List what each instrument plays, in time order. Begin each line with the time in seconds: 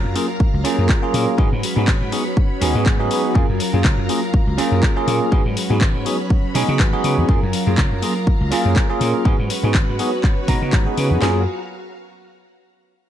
Already playing: string machine F#3 F5 A#5, clean electric guitar C#4 F4 A#4
0.05 slap bass F#2
0.14 tine electric piano A#3 C#4 F4 G#4, clean electric guitar C#4 F4 A#4, open hi-hat
0.28 clean electric guitar F4 A#4
0.40 muted slap bass stroke, kick
0.54 slap bass C#2
0.64 tine electric piano A#3 C#4 F4 G#4, clean electric guitar C#4 F4 A#4, open hi-hat
0.77 slap bass F#2, clean electric guitar F4 A#4
0.88 clean electric guitar C#4 F4 A#4, kick, clap
1.02 tine electric piano A#3 C#4 F4 G#4
1.13 slap bass A#2, clean electric guitar C#4 F4 A#4, open hi-hat
1.26 clean electric guitar F4 A#4
1.38 slap bass G#2, string machine F#3 C#5 B5, clean electric guitar G#3 C#4 F#4 B4, tine electric piano B3 D#4 F#4 G#4, kick
1.52 slap bass G#2
1.62 clean electric guitar G#3 C#4 F#4 B4, open hi-hat
1.76 slap bass G#2, tine electric piano B3 D#4 F#4 G#4
1.87 slap bass G#1, clean electric guitar G#3 F#4 B4, kick, clap
2.01 slap bass G#2
2.11 clean electric guitar G#3 C#4 F#4 B4, tine electric piano B3 D#4 F#4 G#4, open hi-hat
2.25 clean electric guitar C#4 F#4 B4
2.37 kick
2.60 slap bass D#2, clean electric guitar G#3 C#4 F#4 B4, tine electric piano B3 D#4 F#4 G#4, open hi-hat
2.74 slap bass G#2, clean electric guitar C#4 F#4 B4
2.86 clean electric guitar G#3 C#4 F#4 B4, kick, clap
2.99 tine electric piano B3 D#4 F#4 G#4
3.10 clean electric guitar G#3 C#4 F#4 B4, open hi-hat
3.23 clean electric guitar C#4 F#4 B4
3.35 slap bass F#2, tine electric piano A#3 C#4 F4 G#4, clean electric guitar C#4 F4 A#4, string machine F5 A#5, kick
3.49 slap bass F#2
3.59 clean electric guitar C#4 F4 A#4, open hi-hat
3.73 slap bass F#2, tine electric piano A#3 C#4 F4 G#4
3.84 slap bass F#1, clean electric guitar C#4 F4 A#4, kick, clap
3.98 slap bass F#2
4.08 tine electric piano A#3 C#4 F4 G#4, clean electric guitar C#4 F4 A#4, open hi-hat
4.22 clean electric guitar F4 A#4
4.34 muted slap bass stroke, kick
4.47 slap bass C#2
4.57 tine electric piano A#3 C#4 F4 G#4, clean electric guitar C#4 F4 A#4, open hi-hat
4.71 slap bass F#2, clean electric guitar F4 A#4
4.82 clean electric guitar C#4 F4 A#4, kick, clap
4.96 tine electric piano A#3 C#4 F4 G#4
5.07 slap bass A#2, clean electric guitar C#4 F4 A#4, open hi-hat
5.20 clean electric guitar F4 A#4
5.31 slap bass G#2, string machine F#3 C#5 B5, clean electric guitar G#3 C#4 F#4 B4, tine electric piano B3 D#4 F#4 G#4, kick
5.45 slap bass G#2
5.55 clean electric guitar G#3 C#4 F#4 B4, open hi-hat
5.70 slap bass G#2, tine electric piano B3 D#4 F#4 G#4
5.80 slap bass G#1, clean electric guitar G#3 C#4 F#4 B4, kick, clap
5.94 slap bass G#2
6.05 clean electric guitar G#3 C#4 F#4 B4, tine electric piano B3 D#4 F#4 G#4, open hi-hat
6.18 clean electric guitar C#4 F#4 B4
6.30 kick
6.54 slap bass B2, clean electric guitar G#3 C#4 F#4 B4, tine electric piano B3 D#4 F#4 G#4, open hi-hat
6.68 slap bass C#3, clean electric guitar C#4 F#4 B4
6.79 slap bass G#1, clean electric guitar G#3 C#4 F#4 B4, kick, clap
6.93 tine electric piano B3 D#4 F#4 G#4
7.03 slap bass C#3, clean electric guitar G#3 C#4 F#4 B4, open hi-hat
7.17 slap bass F#2, clean electric guitar C#4 F#4 B4
7.28 slap bass F#2, tine electric piano A#3 C#4 F4 G#4, clean electric guitar C#4 F4 A#4, string machine F5 A#5, kick
7.43 slap bass F#2
7.53 clean electric guitar C#4 F4 A#4, open hi-hat
7.67 slap bass F#2, tine electric piano A#3 C#4 F4 G#4
7.78 slap bass F#1, clean electric guitar C#4 F4 A#4, kick, clap
7.92 slap bass F#2
8.02 tine electric piano A#3 C#4 F4 G#4, clean electric guitar C#4 F4 A#4, open hi-hat
8.15 clean electric guitar F4 A#4
8.27 muted slap bass stroke, kick
8.41 slap bass C#2
8.51 tine electric piano A#3 C#4 F4 G#4, clean electric guitar C#4 F4 A#4, open hi-hat
8.64 slap bass F#2, clean electric guitar F4 A#4
8.75 clean electric guitar C#4 F4 A#4, kick, clap
8.89 tine electric piano A#3 C#4 F4 G#4
9.00 slap bass A#2, clean electric guitar C#4 F4 A#4, open hi-hat
9.13 clean electric guitar F4 A#4
9.25 slap bass G#2, clean electric guitar G#3 C#4 F#4 B4, tine electric piano B3 D#4 F#4 G#4, string machine F#4 B4 C#5, kick
9.39 slap bass G#2
9.49 clean electric guitar G#3 C#4 F#4 B4, open hi-hat
9.63 slap bass G#2, tine electric piano B3 D#4 F#4 G#4
9.74 slap bass G#1, clean electric guitar G#3, kick, clap
9.89 slap bass G#2
9.98 clean electric guitar G#3 C#4 F#4 B4, tine electric piano B3 D#4 F#4 G#4, open hi-hat
10.12 clean electric guitar C#4 F#4 B4
10.24 kick, clap
10.47 slap bass B2, clean electric guitar G#3 C#4 F#4 B4, tine electric piano B3 D#4 F#4 A#5, kick, open hi-hat
10.61 slap bass C#3, clean electric guitar C#4 F#4 B4
10.72 slap bass G#1, clean electric guitar G#3 C#4 F#4 B4, kick, clap
10.86 tine electric piano B3 D#4 F#4 G#4
10.97 slap bass C#3, clean electric guitar G#3 C#4 F#4 B4, open hi-hat
11.10 slap bass F#2, clean electric guitar C#4 F#4 B4
11.21 slap bass F#2, tine electric piano A#3 C#4 F4 G#4, clean electric guitar C#4 F4 A#4, string machine F#4 F5 A#5, snare, clap